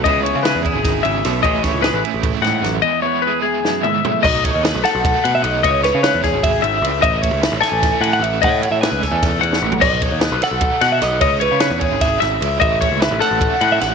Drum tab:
CC |--------------|--------------|--------------|x-------------|
RD |x-x-x-x-x-x-x-|x-x-x-x-x-x-x-|--------------|--x-x-x-x-x-x-|
SD |----o---o---o-|--o-o-----o-o-|--------o-----|----o-o-------|
T2 |--------------|--------------|----------o---|--------------|
FT |--------------|--------------|------------o-|--------------|
BD |o-----o-o-----|o-o-----o-----|--------------|o-o-----o-----|

CC |--------------|--------------|--------------|x-------------|
RD |x-x-x-x-x-x-x-|x-x-x-x-x-x-x-|x-x-x-x-x-x---|--x-x-x-x-x-x-|
SD |--o-o-o-------|----o-o-o-----|----o-o-o--o--|----o-o---o-o-|
T2 |--------------|--------------|--------------|--------------|
FT |--------------|--------------|-------------o|--------------|
BD |o-----o-o-----|o-o-----o-----|o-----o-o-----|o-o-----o-----|

CC |--------------|--------------|
RD |x-x-x-x-x-x-x-|x-x-x-x-x-x-x-|
SD |----o---o-o---|----o-o-----o-|
T2 |--------------|--------------|
FT |--------------|--------------|
BD |o-----o-o-----|o-o-----o-----|